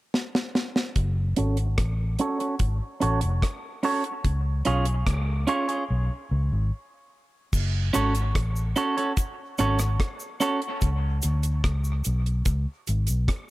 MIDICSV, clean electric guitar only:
0, 0, Header, 1, 3, 480
1, 0, Start_track
1, 0, Key_signature, 3, "minor"
1, 0, Tempo, 820793
1, 561, Time_signature, 4, 2, 24, 8
1, 7895, End_track
2, 0, Start_track
2, 0, Title_t, "Clean electric guitar"
2, 0, Program_c, 0, 27
2, 800, Note_on_c, 0, 61, 82
2, 803, Note_on_c, 0, 66, 89
2, 807, Note_on_c, 0, 69, 93
2, 811, Note_on_c, 0, 73, 95
2, 910, Note_off_c, 0, 61, 0
2, 912, Note_off_c, 0, 66, 0
2, 914, Note_off_c, 0, 69, 0
2, 916, Note_off_c, 0, 73, 0
2, 1283, Note_on_c, 0, 61, 79
2, 1287, Note_on_c, 0, 66, 79
2, 1292, Note_on_c, 0, 69, 83
2, 1292, Note_on_c, 0, 73, 98
2, 1391, Note_off_c, 0, 73, 0
2, 1392, Note_off_c, 0, 61, 0
2, 1394, Note_off_c, 0, 66, 0
2, 1397, Note_off_c, 0, 69, 0
2, 1398, Note_on_c, 0, 73, 61
2, 1403, Note_on_c, 0, 69, 57
2, 1406, Note_on_c, 0, 66, 53
2, 1410, Note_on_c, 0, 61, 52
2, 1486, Note_off_c, 0, 73, 0
2, 1488, Note_off_c, 0, 69, 0
2, 1490, Note_off_c, 0, 66, 0
2, 1492, Note_off_c, 0, 61, 0
2, 1757, Note_on_c, 0, 61, 72
2, 1764, Note_on_c, 0, 66, 85
2, 1765, Note_on_c, 0, 69, 85
2, 1769, Note_on_c, 0, 73, 90
2, 1869, Note_off_c, 0, 61, 0
2, 1871, Note_off_c, 0, 73, 0
2, 1873, Note_off_c, 0, 66, 0
2, 1873, Note_off_c, 0, 69, 0
2, 2240, Note_on_c, 0, 61, 76
2, 2246, Note_on_c, 0, 66, 66
2, 2249, Note_on_c, 0, 69, 77
2, 2251, Note_on_c, 0, 73, 89
2, 2351, Note_off_c, 0, 61, 0
2, 2354, Note_off_c, 0, 66, 0
2, 2355, Note_off_c, 0, 69, 0
2, 2357, Note_off_c, 0, 73, 0
2, 2721, Note_on_c, 0, 61, 72
2, 2727, Note_on_c, 0, 65, 93
2, 2729, Note_on_c, 0, 68, 79
2, 2733, Note_on_c, 0, 73, 81
2, 2832, Note_off_c, 0, 61, 0
2, 2835, Note_off_c, 0, 65, 0
2, 2836, Note_off_c, 0, 68, 0
2, 2838, Note_off_c, 0, 73, 0
2, 3200, Note_on_c, 0, 61, 78
2, 3204, Note_on_c, 0, 65, 77
2, 3208, Note_on_c, 0, 68, 77
2, 3211, Note_on_c, 0, 73, 88
2, 3311, Note_off_c, 0, 61, 0
2, 3313, Note_off_c, 0, 65, 0
2, 3315, Note_off_c, 0, 68, 0
2, 3315, Note_off_c, 0, 73, 0
2, 3322, Note_on_c, 0, 73, 48
2, 3327, Note_on_c, 0, 68, 57
2, 3331, Note_on_c, 0, 65, 49
2, 3332, Note_on_c, 0, 61, 42
2, 3408, Note_off_c, 0, 73, 0
2, 3411, Note_off_c, 0, 68, 0
2, 3413, Note_off_c, 0, 65, 0
2, 3414, Note_off_c, 0, 61, 0
2, 4640, Note_on_c, 0, 61, 93
2, 4644, Note_on_c, 0, 66, 97
2, 4649, Note_on_c, 0, 69, 89
2, 4651, Note_on_c, 0, 73, 94
2, 4752, Note_off_c, 0, 61, 0
2, 4754, Note_off_c, 0, 66, 0
2, 4757, Note_off_c, 0, 69, 0
2, 4757, Note_off_c, 0, 73, 0
2, 5123, Note_on_c, 0, 61, 74
2, 5126, Note_on_c, 0, 66, 82
2, 5130, Note_on_c, 0, 69, 77
2, 5133, Note_on_c, 0, 73, 82
2, 5234, Note_off_c, 0, 61, 0
2, 5235, Note_off_c, 0, 66, 0
2, 5237, Note_off_c, 0, 69, 0
2, 5239, Note_off_c, 0, 73, 0
2, 5246, Note_on_c, 0, 73, 60
2, 5249, Note_on_c, 0, 69, 63
2, 5253, Note_on_c, 0, 66, 55
2, 5256, Note_on_c, 0, 61, 55
2, 5331, Note_off_c, 0, 73, 0
2, 5332, Note_off_c, 0, 69, 0
2, 5334, Note_off_c, 0, 66, 0
2, 5336, Note_off_c, 0, 61, 0
2, 5607, Note_on_c, 0, 61, 80
2, 5612, Note_on_c, 0, 66, 76
2, 5614, Note_on_c, 0, 69, 78
2, 5619, Note_on_c, 0, 73, 84
2, 5716, Note_off_c, 0, 61, 0
2, 5718, Note_off_c, 0, 66, 0
2, 5719, Note_off_c, 0, 69, 0
2, 5722, Note_off_c, 0, 73, 0
2, 6084, Note_on_c, 0, 61, 82
2, 6089, Note_on_c, 0, 66, 83
2, 6092, Note_on_c, 0, 69, 80
2, 6095, Note_on_c, 0, 73, 89
2, 6194, Note_off_c, 0, 61, 0
2, 6197, Note_off_c, 0, 66, 0
2, 6198, Note_off_c, 0, 69, 0
2, 6200, Note_off_c, 0, 73, 0
2, 7895, End_track
3, 0, Start_track
3, 0, Title_t, "Muted clean electric guitar strokes"
3, 1878, Note_on_c, 9, 29, 38
3, 1936, Note_off_c, 9, 29, 0
3, 7895, End_track
0, 0, End_of_file